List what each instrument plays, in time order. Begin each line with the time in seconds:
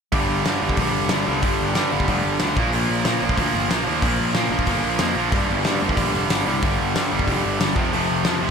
0.12 picked electric bass G1, overdriven electric guitar G2 D3 G3, kick, open hi-hat
0.29 picked electric bass G1
0.45 picked electric bass G2, overdriven electric guitar G2 D3 G3, snare, open hi-hat
0.63 picked electric bass G1, overdriven electric guitar G2 D3 G3
0.69 kick
0.77 picked electric bass A#1, overdriven electric guitar G2 D3 G3, kick, open hi-hat
0.95 picked electric bass F1
1.09 picked electric bass G1, overdriven electric guitar G2 D3 G3, snare, open hi-hat
1.28 picked electric bass C2, overdriven electric guitar G2 D3 G3
1.42 picked electric bass G1, overdriven electric guitar G2 D3 G3, kick, open hi-hat
1.61 picked electric bass G1
1.75 picked electric bass G2, overdriven electric guitar G2 D3 G3, snare, open hi-hat
1.92 picked electric bass G1, overdriven electric guitar G2 D3 G3
2.00 kick
2.08 picked electric bass F1, overdriven electric guitar G2 D3 G3, kick, open hi-hat
2.26 picked electric bass G1
2.39 picked electric bass D2, overdriven electric guitar G2 D3, snare, open hi-hat
2.44 overdriven electric guitar G3
2.57 picked electric bass A#1, overdriven electric guitar A#2 F3 A#3, kick
2.73 picked electric bass A#1, overdriven electric guitar A#2 F3 A#3, open hi-hat
2.90 picked electric bass A#1
3.05 picked electric bass A#2, overdriven electric guitar A#2 F3 A#3, snare, open hi-hat
3.22 picked electric bass A#1, overdriven electric guitar A#2 F3 A#3
3.29 kick
3.37 picked electric bass D2, overdriven electric guitar A#2 F3 A#3, kick, open hi-hat
3.55 picked electric bass G1
3.70 picked electric bass A#1, overdriven electric guitar A#2 F3 A#3, snare, open hi-hat
3.86 picked electric bass D#2, overdriven electric guitar A#2 F3 A#3
4.02 picked electric bass A#1, overdriven electric guitar A#2 F3 A#3, kick, open hi-hat
4.20 picked electric bass A#1
4.34 picked electric bass A#2, overdriven electric guitar A#2 F3 A#3, snare, open hi-hat
4.50 picked electric bass A#1, overdriven electric guitar A#2 F3 A#3
4.59 kick
4.67 picked electric bass G1, overdriven electric guitar A#2 F3 A#3, kick, open hi-hat
4.83 picked electric bass A#1
4.99 picked electric bass F2, overdriven electric guitar F3 A#3, snare, open hi-hat
5.03 overdriven electric guitar A#2
5.15 picked electric bass A#1, overdriven electric guitar A#2 F3 A#3
5.32 picked electric bass G1, overdriven electric guitar G2 D3 G3, kick, open hi-hat
5.50 picked electric bass G1
5.64 picked electric bass G2, overdriven electric guitar G2 D3 G3, snare, open hi-hat
5.83 picked electric bass G1, overdriven electric guitar G2 D3 G3
5.89 kick
5.97 picked electric bass A#1, overdriven electric guitar G2 D3, kick, open hi-hat
6.01 overdriven electric guitar G3
6.14 picked electric bass F1
6.30 picked electric bass G1, overdriven electric guitar G2 D3 G3, snare, open hi-hat
6.47 picked electric bass C2, overdriven electric guitar G2 D3 G3
6.63 picked electric bass G1, overdriven electric guitar G2 D3 G3, kick, open hi-hat
6.80 picked electric bass G1
6.95 picked electric bass G2, overdriven electric guitar G2 D3 G3, snare, open hi-hat
7.12 picked electric bass G1, overdriven electric guitar G2 D3 G3
7.19 kick
7.27 picked electric bass F1, overdriven electric guitar G2 D3 G3, kick, open hi-hat
7.46 picked electric bass G1
7.60 picked electric bass G1, overdriven electric guitar G2 D3 G3, snare, open hi-hat
7.76 picked electric bass F1, overdriven electric guitar F2 C3 F3, kick
7.93 picked electric bass F1, overdriven electric guitar F2 C3 F3, open hi-hat
8.10 picked electric bass F1
8.24 overdriven electric guitar F2 C3 F3, picked electric bass F2, snare, open hi-hat
8.42 picked electric bass F1, overdriven electric guitar F2 C3 F3